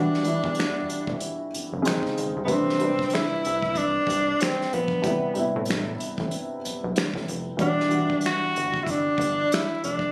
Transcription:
0.00 0.21 E3 medium
0.00 0.23 G3 medium
0.00 0.24 D4 medium
0.00 1.17 D4 medium
0.00 0.25 F#4 medium
0.14 snare soft
0.23 0.34 E2 soft
0.23 1.45 E3 medium
0.23 1.46 G3 medium
0.23 1.47 D4 medium
0.23 closed hi-hat medium
0.27 1.48 E4 medium
0.44 0.82 E2 medium
0.44 kick medium
0.55 closed hi-hat medium
0.60 finger snap medium
0.60 snare loud
0.90 0.97 E1 soft
0.90 closed hi-hat medium
1.07 1.19 E1 medium
1.07 kick medium
1.20 closed hi-hat medium
1.54 1.61 F#1 soft
1.54 closed hi-hat medium
1.73 1.83 F#1 medium
1.82 2.01 A#1 medium
1.82 2.44 C#3 medium
1.82 2.45 G#3 medium
1.82 2.46 C4 medium
1.82 closed hi-hat medium
1.87 2.46 D#4 medium
1.87 finger snap medium
1.87 snare medium
2.03 kick medium
2.03 snare soft
2.18 2.33 G#1 medium
2.18 closed hi-hat medium
2.36 2.51 C2 medium
2.45 2.77 C3 medium
2.45 2.78 G3 medium
2.45 2.53 B3 medium
2.45 kick medium
2.45 closed hi-hat medium
2.49 2.91 A1 loud
2.49 3.15 C4 medium
2.49 2.80 D4 medium
2.49 2.79 B4 medium
2.69 snare soft
2.78 4.01 C3 medium
2.78 4.02 G3 medium
2.78 4.02 B4 medium
2.78 closed hi-hat soft
2.83 4.03 D4 medium
2.99 3.05 C2 soft
2.99 kick medium
2.99 snare soft
3.10 closed hi-hat medium
3.14 3.79 E4 loud
3.14 finger snap medium
3.14 snare loud
3.32 3.37 C2 soft
3.45 3.98 C2 medium
3.45 closed hi-hat medium
3.62 kick medium
3.75 4.43 D4 medium
3.75 kick medium
3.75 closed hi-hat medium
4.07 4.34 C2 medium
4.07 kick medium
4.07 closed hi-hat medium
4.41 4.75 C4 medium
4.41 finger snap medium
4.41 snare loud
4.41 closed hi-hat medium
4.61 snare soft
4.73 4.99 A#1 medium
4.73 5.37 B3 medium
4.73 closed hi-hat medium
4.88 kick medium
5.02 5.20 A1 medium
5.02 5.32 C3 medium
5.02 5.34 G3 medium
5.02 5.35 B3 medium
5.02 kick medium
5.02 closed hi-hat medium
5.07 5.35 E4 medium
5.34 5.44 A2 soft
5.34 6.56 C3 medium
5.34 6.57 G3 medium
5.34 6.58 B3 medium
5.34 closed hi-hat medium
5.39 6.59 E4 medium
5.56 5.93 A2 medium
5.65 closed hi-hat medium
5.70 finger snap medium
5.70 snare loud
6.00 6.08 A1 soft
6.00 closed hi-hat medium
6.18 6.30 A1 medium
6.18 kick medium
6.31 closed hi-hat medium
6.65 6.72 B1 soft
6.65 closed hi-hat medium
6.84 6.94 B1 medium
6.96 finger snap medium
6.96 snare loud
6.96 closed hi-hat medium
7.14 7.25 A1 medium
7.14 kick medium
7.14 snare soft
7.28 7.54 F1 medium
7.28 closed hi-hat medium
7.57 8.02 E1 medium
7.57 7.87 E3 medium
7.57 7.89 G3 medium
7.57 7.90 D4 medium
7.57 8.20 D4 medium
7.57 kick loud
7.57 closed hi-hat medium
7.62 7.91 F#4 medium
7.80 snare soft
7.89 9.11 E3 medium
7.89 9.12 G3 medium
7.89 9.13 D4 medium
7.89 closed hi-hat medium
7.94 9.14 F#4 medium
8.10 8.16 G1 soft
8.10 kick medium
8.21 closed hi-hat medium
8.26 8.85 F#4 loud
8.26 finger snap medium
8.26 snare loud
8.43 8.48 G1 soft
8.56 9.09 G1 medium
8.56 closed hi-hat medium
8.74 kick medium
8.83 8.92 E4 medium
8.83 kick medium
8.83 closed hi-hat medium
8.90 9.55 D4 medium
9.18 9.45 G1 medium
9.18 kick medium
9.18 closed hi-hat medium
9.52 9.84 E4 medium
9.52 finger snap medium
9.52 snare loud
9.52 closed hi-hat medium
9.84 10.10 F1 medium
9.84 10.12 D4 medium
9.84 closed hi-hat medium
9.99 kick medium

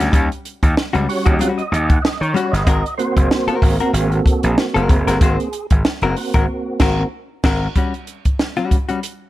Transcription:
0.00 0.10 D2 medium
0.00 0.09 G3 soft
0.00 snare soft
0.00 closed hi-hat medium
0.12 0.27 D#2 loud
0.12 0.28 G3 medium
0.12 0.29 C#4 medium
0.12 0.29 G4 medium
0.12 kick loud
0.12 closed hi-hat medium
0.32 closed hi-hat soft
0.45 closed hi-hat medium
0.63 0.74 D#2 medium
0.63 kick medium
0.63 closed hi-hat medium
0.77 snare loud
0.93 1.06 C#2 medium
0.93 1.07 G3 medium
0.93 1.07 C#4 medium
0.93 1.06 F#4 medium
0.93 closed hi-hat soft
1.08 1.52 G3 soft
1.08 1.52 C#4 soft
1.08 1.53 F#4 soft
1.08 1.27 C#5 medium
1.08 open hi-hat medium
1.26 1.37 D#2 medium
1.26 1.37 G3 medium
1.26 1.36 C#4 medium
1.26 1.36 F#4 medium
1.26 1.40 D#5 loud
1.26 kick loud
1.26 closed hi-hat medium
1.39 1.61 G3 medium
1.39 1.61 C#4 medium
1.39 1.62 F#4 loud
1.39 1.48 F#5 medium
1.39 closed hi-hat loud
1.58 1.90 D#5 medium
1.58 closed hi-hat soft
1.72 1.97 D#2 medium
1.72 closed hi-hat medium
1.89 2.04 F#5 loud
1.89 kick loud
1.89 closed hi-hat soft
2.02 2.21 D#5 loud
2.02 snare loud
2.21 2.32 D#3 medium
2.21 2.54 C#5 loud
2.21 closed hi-hat soft
2.34 2.51 G3 medium
2.34 2.51 C#4 medium
2.34 2.52 F#4 loud
2.34 closed hi-hat medium
2.52 2.64 G1 medium
2.52 2.95 D#5 loud
2.52 snare soft
2.52 closed hi-hat medium
2.66 2.81 G#1 loud
2.66 2.83 C4 medium
2.66 2.83 F#4 medium
2.66 2.84 A#4 loud
2.66 kick loud
2.66 closed hi-hat medium
2.86 closed hi-hat soft
2.98 5.49 A#3 medium
2.98 5.49 C4 soft
2.98 4.56 F#4 medium
2.98 3.64 C5 loud
2.98 closed hi-hat medium
3.16 3.28 F#1 medium
3.16 kick medium
3.16 closed hi-hat medium
3.31 snare loud
3.47 3.68 C4 medium
3.47 3.67 F#4 medium
3.47 3.67 A#4 medium
3.47 muted slap bass stroke soft
3.47 closed hi-hat soft
3.61 3.77 G#1 medium
3.61 3.95 A#4 medium
3.61 kick medium
3.61 open hi-hat medium
3.80 3.91 C4 medium
3.80 3.91 F#4 medium
3.80 3.90 A#4 medium
3.80 closed hi-hat soft
3.93 4.19 G#1 loud
3.93 4.12 G#4 medium
3.93 closed hi-hat medium
4.11 4.41 A4 medium
4.11 closed hi-hat soft
4.26 kick medium
4.26 closed hi-hat medium
4.43 4.55 A#1 medium
4.43 4.58 G#4 medium
4.43 closed hi-hat soft
4.57 4.76 F#4 medium
4.57 snare loud
4.74 4.87 F#1 medium
4.74 4.94 C4 medium
4.74 4.94 F#4 medium
4.74 5.67 G#4 medium
4.74 4.93 A#4 medium
4.74 closed hi-hat soft
4.89 5.04 F#1 medium
4.89 kick loud
4.89 closed hi-hat medium
5.07 5.18 G1 medium
5.07 5.18 C4 medium
5.07 5.18 F#4 medium
5.07 5.17 A#4 medium
5.07 snare soft
5.07 closed hi-hat medium
5.21 5.36 G#1 loud
5.21 5.37 C4 medium
5.21 5.38 F#4 medium
5.21 5.38 C5 medium
5.21 kick loud
5.21 closed hi-hat medium
5.40 closed hi-hat soft
5.53 closed hi-hat medium
5.70 5.82 G#1 loud
5.70 kick medium
5.70 closed hi-hat medium
5.85 snare loud
6.01 6.13 F#1 loud
6.01 6.16 C4 medium
6.01 6.16 F#4 medium
6.01 6.15 A#4 medium
6.01 closed hi-hat soft
6.16 7.08 A#3 medium
6.16 7.08 C4 soft
6.16 7.09 F#4 medium
6.16 open hi-hat medium
6.34 6.46 G#1 loud
6.34 6.45 C4 medium
6.34 6.45 F#4 medium
6.34 6.44 A#4 medium
6.34 kick loud
6.34 closed hi-hat soft
6.80 7.03 G#1 loud
6.80 7.03 C4 loud
6.80 7.03 F#4 loud
6.80 7.03 A#4 loud
6.80 kick medium
6.80 snare loud
6.80 crash medium
7.44 7.66 G#1 loud
7.44 7.66 C4 loud
7.44 7.67 F#4 loud
7.44 7.67 A#4 loud
7.44 kick loud
7.44 snare loud
7.44 crash medium
7.75 7.92 G3 medium
7.75 7.93 C#4 medium
7.75 7.93 F#4 medium
7.75 kick medium
7.75 closed hi-hat medium
7.94 closed hi-hat soft
8.07 closed hi-hat medium
8.25 kick medium
8.25 closed hi-hat soft
8.39 snare medium
8.56 8.77 G3 medium
8.56 8.76 C#4 medium
8.56 8.76 F#4 medium
8.56 closed hi-hat soft
8.71 kick medium
8.71 closed hi-hat medium
8.89 9.00 G3 medium
8.89 8.99 C#4 medium
8.89 8.99 F#4 medium
8.89 closed hi-hat soft
9.03 closed hi-hat medium

